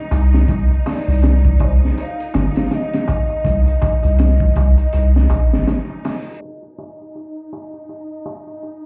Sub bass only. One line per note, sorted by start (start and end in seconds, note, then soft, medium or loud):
0.11 0.45 C2 medium
0.49 0.68 C2 loud
1.08 1.57 C2 loud
1.60 1.79 C2 loud
2.35 2.54 G1 medium
3.45 3.64 C2 loud
4.04 4.53 C2 loud
4.56 4.76 C2 loud
4.94 5.27 C2 medium
5.30 5.53 A#1 medium
5.52 5.65 G1 medium